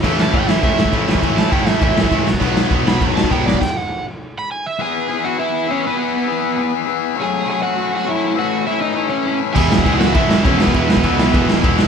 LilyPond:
<<
  \new Staff \with { instrumentName = "Overdriven electric guitar" } { \time 4/4 \key e \major \tempo 4 = 202 r8 a''8 g''8 e''8 e''4 r4 | r8 a''8 g''8 e''8 e''4 r4 | r4. b''8 r8 a''8 g''8 d''8 | g''8 fis''4 r4 b''8 gis''8 e''8 |
<gis' gis''>4. <fis' fis''>8 <e' e''>4 <cis' cis''>8 <b b'>8~ | <b b'>2~ <b b'>8 r4. | <gis' gis''>4 <gis' gis''>8 <fis' fis''>4 <fis' fis''>8 <e' e''>4 | <fis' fis''>4 <e' e''>8 <dis' dis''>4 <cis' cis''>4 r8 |
<gis' gis''>4. <fis' fis''>8 <e' e''>4 <cis' cis''>8 <b b'>8~ | <b b'>2~ <b b'>8 r4. | }
  \new Staff \with { instrumentName = "Overdriven electric guitar" } { \time 4/4 \key e \major <a, e a cis' e'>4 <a, e a cis' e'>4 <a, e a cis' e'>4 <a, e a cis' e'>4 | <a, e a cis' e'>4 <a, e a cis' e'>4 <a, e a cis' e'>4 <a, e a cis' e'>8 r8 | <b, dis fis b dis'>4 <b, dis fis b dis'>4 <b, dis fis b dis'>4 <b, dis fis b dis'>4 | r1 |
<e b e' gis'>4 <e b e' gis'>4 <e b e' gis'>4 <e b e' gis'>4 | <e b e' gis'>4 <e b e' gis'>4 <e b e' gis'>4 <e b e' gis'>4 | <fis a cis' fis'>4 <fis a cis' fis'>4 <fis a cis' fis'>4 <fis a cis' fis'>4 | <a, e a cis' e'>4 <a, e a cis' e'>4 <a, e a cis' e'>4 <a, e a cis' e'>4 |
<e gis b e'>4 <e gis b e'>4 <e gis b e'>4 <e gis b e'>4 | <e gis b e'>4 <e gis b e'>4 <e gis b e'>4 <e gis b e'>4 | }
  \new Staff \with { instrumentName = "Distorted electric guitar" } { \clef bass \time 4/4 \key e \major <a, e a>4 <a, e a>4 <a, e a>4 <a, e a>4 | <a, e a>4 <a, e a>4 <a, e a>4 <a, e a>8 r8 | <b, fis b>4 <b, fis b>4 <b, fis b>4 <b, fis b>4 | r1 |
r1 | r1 | r1 | r1 |
<e, b, e>4 <e, b, e>4 <e, b, e>4 <e, b, e>4 | <e, b, e>4 <e, b, e>4 <e, b, e>4 <e, b, e>4 | }
  \new Staff \with { instrumentName = "Distorted electric guitar" } { \clef bass \time 4/4 \key e \major <a, e a>2.~ <a, e a>8 <a, e a>8 | <a, e a>2.~ <a, e a>8 <b, fis b>8~ | <b, fis b>2. <b, fis b>8 r8 | r1 |
r1 | r1 | r1 | r1 |
<e, b, e>4 <e, b, e>4 <e, b, e>4 <e, b, e>4 | <e, b, e>4 <e, b, e>4 <e, b, e>4 <e, b, e>4 | }
  \new Staff \with { instrumentName = "Picked electric bass" } { \clef bass \time 4/4 \key e \major a,,4 a,,8 a,,8 a,,8 a,8 a,,8 a,,8 | a,,4 a,,8 a,,8 a,,8 a,8 cis,8 b,,8 | b,,4 b,,8 b,,8 b,,8 b,8 b,,8 b,,8 | r1 |
r1 | r1 | r1 | r1 |
e,,8 e,,8 cis,4 e,,8 e,,8 e,,4 | e,,8 e,,8 cis,4 e,,8 e,,8 e,,4 | }
  \new DrumStaff \with { instrumentName = "Drums" } \drummode { \time 4/4 <cymc bd>8 sn8 <bd cymr>8 sn8 <bd cymr>8 sn16 bd16 <bd cymr>8 sn16 bd16 | <bd cymr>8 sn8 <bd cymr>8 sn8 <bd cymr>8 sn16 bd16 <bd cymr>8 sn16 bd16 | <cymc bd>8 sn8 <bd cymr>8 sn8 <bd cymr>8 sn16 bd16 <bd cymr>8 sn16 bd16 | <cymc bd>4 r4 r4 r4 |
r4 r4 r4 r4 | r4 r4 r4 r4 | r4 r4 r4 r4 | r4 r4 r4 r4 |
<cymc bd>8 sn16 bd16 <bd cymr>8 sn8 <bd cymr>8 sn8 <bd cymr>8 sn16 bd16 | <bd cymr>8 sn16 bd16 <bd cymr>8 sn8 <bd cymr>8 sn8 <bd cymr>8 sn8 | }
>>